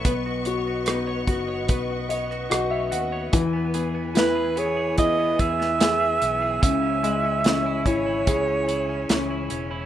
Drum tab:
HH |x-x-x-x-x-x-x-x-|x-x-x-x-x-x-x-x-|x-x-x-x-x-x-x-x-|
SD |----r------rr---|----o------oo---|----o-------o---|
BD |o-----o-o-------|o-------o-o-----|o-----o-o-------|